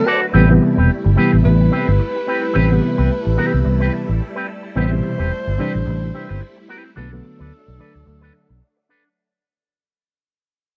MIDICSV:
0, 0, Header, 1, 7, 480
1, 0, Start_track
1, 0, Tempo, 551471
1, 301, Time_signature, 4, 2, 24, 8
1, 9372, End_track
2, 0, Start_track
2, 0, Title_t, "Tenor saxophone"
2, 0, Program_c, 0, 66
2, 0, Note_on_c, 0, 69, 100
2, 177, Note_off_c, 0, 69, 0
2, 1261, Note_on_c, 0, 71, 82
2, 3870, Note_off_c, 0, 71, 0
2, 4148, Note_on_c, 0, 72, 84
2, 5793, Note_off_c, 0, 72, 0
2, 6066, Note_on_c, 0, 69, 81
2, 7709, Note_off_c, 0, 69, 0
2, 9372, End_track
3, 0, Start_track
3, 0, Title_t, "Clean electric guitar"
3, 0, Program_c, 1, 27
3, 53, Note_on_c, 1, 66, 103
3, 65, Note_on_c, 1, 69, 102
3, 71, Note_on_c, 1, 74, 108
3, 181, Note_off_c, 1, 74, 0
3, 191, Note_off_c, 1, 69, 0
3, 216, Note_off_c, 1, 66, 0
3, 294, Note_on_c, 1, 60, 87
3, 302, Note_on_c, 1, 67, 89
3, 308, Note_on_c, 1, 71, 98
3, 425, Note_off_c, 1, 71, 0
3, 435, Note_off_c, 1, 67, 0
3, 457, Note_off_c, 1, 60, 0
3, 672, Note_on_c, 1, 71, 57
3, 683, Note_on_c, 1, 67, 65
3, 688, Note_on_c, 1, 60, 50
3, 776, Note_off_c, 1, 71, 0
3, 782, Note_off_c, 1, 67, 0
3, 784, Note_off_c, 1, 60, 0
3, 1013, Note_on_c, 1, 60, 84
3, 1021, Note_on_c, 1, 67, 92
3, 1031, Note_on_c, 1, 71, 100
3, 1142, Note_off_c, 1, 71, 0
3, 1154, Note_off_c, 1, 67, 0
3, 1177, Note_off_c, 1, 60, 0
3, 1494, Note_on_c, 1, 60, 92
3, 1504, Note_on_c, 1, 67, 83
3, 1510, Note_on_c, 1, 71, 98
3, 1624, Note_off_c, 1, 71, 0
3, 1635, Note_off_c, 1, 67, 0
3, 1658, Note_off_c, 1, 60, 0
3, 1978, Note_on_c, 1, 60, 86
3, 1986, Note_on_c, 1, 67, 94
3, 1995, Note_on_c, 1, 71, 96
3, 2097, Note_off_c, 1, 71, 0
3, 2109, Note_off_c, 1, 67, 0
3, 2140, Note_off_c, 1, 60, 0
3, 2208, Note_on_c, 1, 60, 86
3, 2219, Note_on_c, 1, 67, 92
3, 2225, Note_on_c, 1, 71, 98
3, 2338, Note_off_c, 1, 71, 0
3, 2349, Note_off_c, 1, 67, 0
3, 2375, Note_off_c, 1, 60, 0
3, 2587, Note_on_c, 1, 71, 77
3, 2594, Note_on_c, 1, 67, 68
3, 2602, Note_on_c, 1, 60, 61
3, 2695, Note_off_c, 1, 71, 0
3, 2698, Note_off_c, 1, 67, 0
3, 2702, Note_off_c, 1, 60, 0
3, 2930, Note_on_c, 1, 60, 76
3, 2941, Note_on_c, 1, 67, 85
3, 2948, Note_on_c, 1, 71, 103
3, 3056, Note_off_c, 1, 71, 0
3, 3068, Note_off_c, 1, 67, 0
3, 3120, Note_off_c, 1, 60, 0
3, 3310, Note_on_c, 1, 71, 92
3, 3322, Note_on_c, 1, 67, 82
3, 3325, Note_on_c, 1, 60, 70
3, 3408, Note_off_c, 1, 60, 0
3, 3415, Note_off_c, 1, 67, 0
3, 3420, Note_off_c, 1, 71, 0
3, 3791, Note_on_c, 1, 71, 89
3, 3799, Note_on_c, 1, 67, 76
3, 3808, Note_on_c, 1, 60, 71
3, 3886, Note_off_c, 1, 60, 0
3, 3890, Note_off_c, 1, 67, 0
3, 3895, Note_off_c, 1, 71, 0
3, 4139, Note_on_c, 1, 60, 84
3, 4146, Note_on_c, 1, 67, 83
3, 4153, Note_on_c, 1, 71, 91
3, 4268, Note_off_c, 1, 71, 0
3, 4280, Note_off_c, 1, 67, 0
3, 4301, Note_off_c, 1, 60, 0
3, 4510, Note_on_c, 1, 71, 71
3, 4519, Note_on_c, 1, 67, 59
3, 4529, Note_on_c, 1, 60, 59
3, 4617, Note_off_c, 1, 71, 0
3, 4621, Note_off_c, 1, 67, 0
3, 4626, Note_off_c, 1, 60, 0
3, 4859, Note_on_c, 1, 60, 90
3, 4868, Note_on_c, 1, 67, 84
3, 4874, Note_on_c, 1, 71, 96
3, 4986, Note_off_c, 1, 71, 0
3, 4997, Note_off_c, 1, 67, 0
3, 5021, Note_off_c, 1, 60, 0
3, 5339, Note_on_c, 1, 60, 60
3, 5350, Note_on_c, 1, 67, 71
3, 5358, Note_on_c, 1, 71, 72
3, 5465, Note_off_c, 1, 71, 0
3, 5472, Note_off_c, 1, 60, 0
3, 5475, Note_off_c, 1, 67, 0
3, 5476, Note_on_c, 1, 71, 67
3, 5486, Note_on_c, 1, 67, 63
3, 5492, Note_on_c, 1, 60, 55
3, 5571, Note_off_c, 1, 60, 0
3, 5576, Note_off_c, 1, 67, 0
3, 5579, Note_off_c, 1, 71, 0
3, 5818, Note_on_c, 1, 60, 87
3, 5827, Note_on_c, 1, 67, 94
3, 5834, Note_on_c, 1, 71, 102
3, 5948, Note_off_c, 1, 71, 0
3, 5958, Note_off_c, 1, 67, 0
3, 6003, Note_off_c, 1, 60, 0
3, 6057, Note_on_c, 1, 62, 75
3, 6065, Note_on_c, 1, 69, 86
3, 6073, Note_on_c, 1, 71, 83
3, 6181, Note_off_c, 1, 71, 0
3, 6193, Note_off_c, 1, 69, 0
3, 6220, Note_off_c, 1, 62, 0
3, 6437, Note_on_c, 1, 71, 65
3, 6444, Note_on_c, 1, 69, 58
3, 6452, Note_on_c, 1, 62, 53
3, 6539, Note_off_c, 1, 71, 0
3, 6543, Note_off_c, 1, 69, 0
3, 6547, Note_off_c, 1, 62, 0
3, 6779, Note_on_c, 1, 62, 76
3, 6787, Note_on_c, 1, 69, 68
3, 6794, Note_on_c, 1, 71, 92
3, 6903, Note_off_c, 1, 71, 0
3, 6914, Note_off_c, 1, 69, 0
3, 6940, Note_off_c, 1, 62, 0
3, 7149, Note_on_c, 1, 71, 100
3, 7160, Note_on_c, 1, 69, 85
3, 7169, Note_on_c, 1, 62, 73
3, 7245, Note_off_c, 1, 62, 0
3, 7250, Note_off_c, 1, 69, 0
3, 7255, Note_off_c, 1, 71, 0
3, 7740, Note_on_c, 1, 62, 90
3, 7748, Note_on_c, 1, 69, 89
3, 7752, Note_on_c, 1, 71, 90
3, 7860, Note_off_c, 1, 71, 0
3, 7870, Note_off_c, 1, 69, 0
3, 7900, Note_off_c, 1, 62, 0
3, 9372, End_track
4, 0, Start_track
4, 0, Title_t, "String machine"
4, 0, Program_c, 2, 50
4, 0, Note_on_c, 2, 54, 86
4, 0, Note_on_c, 2, 57, 67
4, 0, Note_on_c, 2, 62, 92
4, 0, Note_on_c, 2, 71, 75
4, 268, Note_off_c, 2, 71, 0
4, 282, Note_off_c, 2, 54, 0
4, 282, Note_off_c, 2, 57, 0
4, 282, Note_off_c, 2, 62, 0
4, 293, Note_on_c, 2, 57, 70
4, 294, Note_on_c, 2, 55, 72
4, 296, Note_on_c, 2, 64, 82
4, 6026, Note_off_c, 2, 55, 0
4, 6026, Note_off_c, 2, 57, 0
4, 6027, Note_off_c, 2, 64, 0
4, 6063, Note_on_c, 2, 62, 91
4, 6064, Note_on_c, 2, 57, 68
4, 6067, Note_on_c, 2, 54, 78
4, 7962, Note_off_c, 2, 57, 0
4, 7962, Note_off_c, 2, 62, 0
4, 7964, Note_off_c, 2, 54, 0
4, 9372, End_track
5, 0, Start_track
5, 0, Title_t, "Reed electric piano"
5, 0, Program_c, 3, 4
5, 296, Note_on_c, 3, 48, 86
5, 300, Note_on_c, 3, 52, 88
5, 306, Note_on_c, 3, 55, 90
5, 313, Note_on_c, 3, 59, 91
5, 378, Note_off_c, 3, 48, 0
5, 380, Note_off_c, 3, 52, 0
5, 384, Note_off_c, 3, 55, 0
5, 387, Note_off_c, 3, 59, 0
5, 430, Note_on_c, 3, 48, 93
5, 435, Note_on_c, 3, 52, 81
5, 440, Note_on_c, 3, 55, 84
5, 447, Note_on_c, 3, 59, 98
5, 776, Note_off_c, 3, 48, 0
5, 779, Note_off_c, 3, 52, 0
5, 781, Note_off_c, 3, 55, 0
5, 785, Note_off_c, 3, 59, 0
5, 1015, Note_on_c, 3, 48, 89
5, 1022, Note_on_c, 3, 52, 74
5, 1026, Note_on_c, 3, 55, 79
5, 1034, Note_on_c, 3, 59, 88
5, 1601, Note_off_c, 3, 48, 0
5, 1604, Note_off_c, 3, 52, 0
5, 1606, Note_off_c, 3, 55, 0
5, 1610, Note_off_c, 3, 59, 0
5, 2215, Note_on_c, 3, 48, 89
5, 2220, Note_on_c, 3, 52, 80
5, 2227, Note_on_c, 3, 55, 84
5, 2232, Note_on_c, 3, 60, 98
5, 2300, Note_off_c, 3, 48, 0
5, 2302, Note_off_c, 3, 52, 0
5, 2305, Note_off_c, 3, 55, 0
5, 2308, Note_off_c, 3, 60, 0
5, 2351, Note_on_c, 3, 48, 87
5, 2357, Note_on_c, 3, 52, 76
5, 2363, Note_on_c, 3, 55, 83
5, 2368, Note_on_c, 3, 59, 99
5, 2698, Note_off_c, 3, 48, 0
5, 2701, Note_off_c, 3, 52, 0
5, 2704, Note_off_c, 3, 55, 0
5, 2706, Note_off_c, 3, 59, 0
5, 2941, Note_on_c, 3, 48, 84
5, 2946, Note_on_c, 3, 52, 75
5, 2953, Note_on_c, 3, 55, 82
5, 2958, Note_on_c, 3, 59, 90
5, 3525, Note_off_c, 3, 48, 0
5, 3527, Note_off_c, 3, 52, 0
5, 3531, Note_off_c, 3, 55, 0
5, 3534, Note_off_c, 3, 59, 0
5, 4138, Note_on_c, 3, 48, 89
5, 4144, Note_on_c, 3, 52, 89
5, 4150, Note_on_c, 3, 55, 84
5, 4157, Note_on_c, 3, 59, 104
5, 4222, Note_off_c, 3, 48, 0
5, 4224, Note_off_c, 3, 52, 0
5, 4228, Note_off_c, 3, 55, 0
5, 4231, Note_off_c, 3, 59, 0
5, 4273, Note_on_c, 3, 48, 88
5, 4280, Note_on_c, 3, 52, 81
5, 4285, Note_on_c, 3, 55, 83
5, 4292, Note_on_c, 3, 47, 98
5, 4619, Note_off_c, 3, 48, 0
5, 4623, Note_off_c, 3, 52, 0
5, 4625, Note_off_c, 3, 55, 0
5, 4629, Note_off_c, 3, 47, 0
5, 4862, Note_on_c, 3, 48, 83
5, 4869, Note_on_c, 3, 52, 74
5, 4875, Note_on_c, 3, 55, 75
5, 4879, Note_on_c, 3, 62, 91
5, 5445, Note_off_c, 3, 48, 0
5, 5448, Note_off_c, 3, 52, 0
5, 5451, Note_off_c, 3, 55, 0
5, 5454, Note_off_c, 3, 62, 0
5, 6059, Note_on_c, 3, 50, 88
5, 6065, Note_on_c, 3, 54, 75
5, 6070, Note_on_c, 3, 57, 86
5, 6077, Note_on_c, 3, 59, 94
5, 6141, Note_off_c, 3, 50, 0
5, 6144, Note_off_c, 3, 54, 0
5, 6147, Note_off_c, 3, 57, 0
5, 6151, Note_off_c, 3, 59, 0
5, 6193, Note_on_c, 3, 50, 85
5, 6200, Note_on_c, 3, 54, 85
5, 6206, Note_on_c, 3, 57, 80
5, 6211, Note_on_c, 3, 59, 99
5, 6538, Note_off_c, 3, 50, 0
5, 6541, Note_off_c, 3, 54, 0
5, 6545, Note_off_c, 3, 57, 0
5, 6547, Note_off_c, 3, 59, 0
5, 6778, Note_on_c, 3, 50, 80
5, 6784, Note_on_c, 3, 54, 69
5, 6790, Note_on_c, 3, 57, 66
5, 6795, Note_on_c, 3, 62, 91
5, 7362, Note_off_c, 3, 50, 0
5, 7365, Note_off_c, 3, 54, 0
5, 7368, Note_off_c, 3, 57, 0
5, 7370, Note_off_c, 3, 62, 0
5, 9372, End_track
6, 0, Start_track
6, 0, Title_t, "Fingered electric bass"
6, 0, Program_c, 4, 33
6, 302, Note_on_c, 4, 33, 103
6, 497, Note_off_c, 4, 33, 0
6, 678, Note_on_c, 4, 28, 81
6, 763, Note_off_c, 4, 28, 0
6, 920, Note_on_c, 4, 31, 87
6, 1005, Note_off_c, 4, 31, 0
6, 1161, Note_on_c, 4, 33, 76
6, 1246, Note_off_c, 4, 33, 0
6, 1267, Note_on_c, 4, 33, 103
6, 1461, Note_off_c, 4, 33, 0
6, 1640, Note_on_c, 4, 31, 99
6, 1725, Note_off_c, 4, 31, 0
6, 2229, Note_on_c, 4, 33, 113
6, 2422, Note_off_c, 4, 33, 0
6, 2600, Note_on_c, 4, 36, 77
6, 2686, Note_off_c, 4, 36, 0
6, 2844, Note_on_c, 4, 33, 96
6, 2928, Note_off_c, 4, 33, 0
6, 3081, Note_on_c, 4, 36, 99
6, 3167, Note_off_c, 4, 36, 0
6, 3188, Note_on_c, 4, 36, 98
6, 3382, Note_off_c, 4, 36, 0
6, 3562, Note_on_c, 4, 33, 92
6, 3647, Note_off_c, 4, 33, 0
6, 4150, Note_on_c, 4, 33, 113
6, 4343, Note_off_c, 4, 33, 0
6, 4523, Note_on_c, 4, 28, 86
6, 4607, Note_off_c, 4, 28, 0
6, 4765, Note_on_c, 4, 31, 89
6, 4849, Note_off_c, 4, 31, 0
6, 5007, Note_on_c, 4, 33, 81
6, 5090, Note_off_c, 4, 33, 0
6, 5114, Note_on_c, 4, 33, 105
6, 5306, Note_off_c, 4, 33, 0
6, 5489, Note_on_c, 4, 31, 95
6, 5571, Note_off_c, 4, 31, 0
6, 6071, Note_on_c, 4, 35, 107
6, 6264, Note_off_c, 4, 35, 0
6, 6444, Note_on_c, 4, 38, 88
6, 6528, Note_off_c, 4, 38, 0
6, 6686, Note_on_c, 4, 35, 93
6, 6769, Note_off_c, 4, 35, 0
6, 6923, Note_on_c, 4, 38, 85
6, 7007, Note_off_c, 4, 38, 0
6, 7026, Note_on_c, 4, 38, 95
6, 7220, Note_off_c, 4, 38, 0
6, 7399, Note_on_c, 4, 35, 93
6, 7484, Note_off_c, 4, 35, 0
6, 9372, End_track
7, 0, Start_track
7, 0, Title_t, "Muted clean electric guitar strokes"
7, 191, Note_on_c, 9, 29, 45
7, 278, Note_off_c, 9, 29, 0
7, 436, Note_on_c, 9, 29, 44
7, 523, Note_off_c, 9, 29, 0
7, 540, Note_on_c, 9, 29, 42
7, 627, Note_off_c, 9, 29, 0
7, 909, Note_on_c, 9, 29, 53
7, 996, Note_off_c, 9, 29, 0
7, 1152, Note_on_c, 9, 29, 55
7, 1239, Note_off_c, 9, 29, 0
7, 1255, Note_on_c, 9, 29, 39
7, 1342, Note_off_c, 9, 29, 0
7, 1390, Note_on_c, 9, 29, 53
7, 1477, Note_off_c, 9, 29, 0
7, 1635, Note_on_c, 9, 29, 44
7, 1722, Note_off_c, 9, 29, 0
7, 1736, Note_on_c, 9, 29, 42
7, 1823, Note_off_c, 9, 29, 0
7, 1873, Note_on_c, 9, 29, 53
7, 1960, Note_off_c, 9, 29, 0
7, 2108, Note_on_c, 9, 29, 57
7, 2195, Note_off_c, 9, 29, 0
7, 2349, Note_on_c, 9, 29, 45
7, 2436, Note_off_c, 9, 29, 0
7, 2451, Note_on_c, 9, 29, 42
7, 2538, Note_off_c, 9, 29, 0
7, 2824, Note_on_c, 9, 29, 37
7, 2911, Note_off_c, 9, 29, 0
7, 3066, Note_on_c, 9, 29, 39
7, 3153, Note_off_c, 9, 29, 0
7, 3177, Note_on_c, 9, 29, 39
7, 3264, Note_off_c, 9, 29, 0
7, 3418, Note_on_c, 9, 29, 49
7, 3505, Note_off_c, 9, 29, 0
7, 3558, Note_on_c, 9, 29, 44
7, 3645, Note_off_c, 9, 29, 0
7, 3664, Note_on_c, 9, 29, 45
7, 3751, Note_off_c, 9, 29, 0
7, 3897, Note_on_c, 9, 29, 46
7, 3984, Note_off_c, 9, 29, 0
7, 4030, Note_on_c, 9, 29, 49
7, 4118, Note_off_c, 9, 29, 0
7, 4279, Note_on_c, 9, 29, 41
7, 4366, Note_off_c, 9, 29, 0
7, 4374, Note_on_c, 9, 29, 52
7, 4461, Note_off_c, 9, 29, 0
7, 4761, Note_on_c, 9, 29, 51
7, 4848, Note_off_c, 9, 29, 0
7, 4997, Note_on_c, 9, 29, 44
7, 5084, Note_off_c, 9, 29, 0
7, 5099, Note_on_c, 9, 29, 49
7, 5186, Note_off_c, 9, 29, 0
7, 5239, Note_on_c, 9, 29, 45
7, 5326, Note_off_c, 9, 29, 0
7, 5581, Note_on_c, 9, 29, 45
7, 5668, Note_off_c, 9, 29, 0
7, 5712, Note_on_c, 9, 29, 49
7, 5799, Note_off_c, 9, 29, 0
7, 5958, Note_on_c, 9, 29, 55
7, 6045, Note_off_c, 9, 29, 0
7, 6192, Note_on_c, 9, 29, 49
7, 6279, Note_off_c, 9, 29, 0
7, 6301, Note_on_c, 9, 29, 51
7, 6388, Note_off_c, 9, 29, 0
7, 6675, Note_on_c, 9, 29, 40
7, 6762, Note_off_c, 9, 29, 0
7, 6914, Note_on_c, 9, 29, 42
7, 7001, Note_off_c, 9, 29, 0
7, 7016, Note_on_c, 9, 29, 41
7, 7103, Note_off_c, 9, 29, 0
7, 7256, Note_on_c, 9, 29, 40
7, 7343, Note_off_c, 9, 29, 0
7, 7392, Note_on_c, 9, 29, 48
7, 7479, Note_off_c, 9, 29, 0
7, 7498, Note_on_c, 9, 29, 40
7, 7585, Note_off_c, 9, 29, 0
7, 7632, Note_on_c, 9, 29, 56
7, 7719, Note_off_c, 9, 29, 0
7, 7870, Note_on_c, 9, 29, 42
7, 7957, Note_off_c, 9, 29, 0
7, 9372, End_track
0, 0, End_of_file